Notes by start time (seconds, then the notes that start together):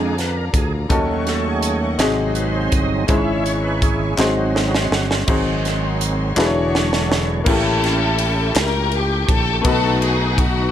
Already playing: F2 D3 G#3 A#3 C4 D4 F4 G#4 A#4 D5 F5 G#5 A#5
0.18 B4, snare, closed hi-hat
0.37 A#4
0.53 D2 G#4, kick, closed hi-hat
0.89 D#2 D#3 F#3 A3 C#4 D#4 F#4 A4 D#5 F#5 C#6, kick, closed hi-hat
1.27 A4, snare, closed hi-hat
1.48 G#4
1.62 closed hi-hat
1.98 G#1 C3 F#3 G#3 C4 D#4 F#4 G#4 G#5 C6, snare, clap, closed hi-hat
2.35 B4, closed hi-hat
2.55 C5
2.72 G1 D#5, kick, closed hi-hat
3.07 G#1 G#2 G#3 C#4 E4 G#4 C5 E5, kick, closed hi-hat
3.12 C#5 E5 G#5 C#6
3.16 C#5
3.44 C#5, closed hi-hat
3.64 B4
3.82 G#4, kick, closed hi-hat
4.17 G#1 F#3 G#3 C4 D#4 F#4 G#4 C5 D#5 F#5, snare, clap
4.21 G#5 C6
4.54 D#4, snare
4.71 F#4, snare
4.91 G1, snare
5.11 snare
5.27 G#1 G#2 D#3 F#3 C4 D#4 F#4 G#4 C5 D#5 F#5 G#5 C6, kick, crash
5.65 snare, closed hi-hat
6.01 closed hi-hat
6.35 E1 D3 E3 F#3 G#3 D4 E4 F#4 G#4 C#5 F#5, clap
6.39 B4 C#6, snare
6.45 C#5
6.75 snare
6.93 snare
7.12 snare
7.44 A1 A2 A#3 C#4 E4 G4 G5 C#6, kick, crash
7.48 A3 G4 A4
7.84 snare, ride
8.18 ride
8.55 C#2 A#4, snare, clap, ride
8.92 ride
8.96 G4
9.29 A#1 A4, kick, ride
9.62 B1 B2 A3 B3 D#4 B4 F#5 D#6, kick, ride
9.66 D#4 F#4 A4 B4
10.02 G#4, ride
10.38 F#4, kick, ride